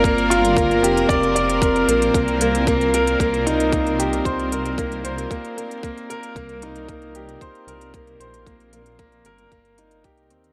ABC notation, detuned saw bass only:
X:1
M:4/4
L:1/8
Q:1/4=114
K:Bbmix
V:1 name="Detuned saw bass" clef=bass
G,,,3 F,,, F,,,3 B,,, | C,,4 C,,4 | C,,4 z4 | C,,4 z C,,2 B,,,- |
B,,,3 G,,, G,,,2 C,, E,, |]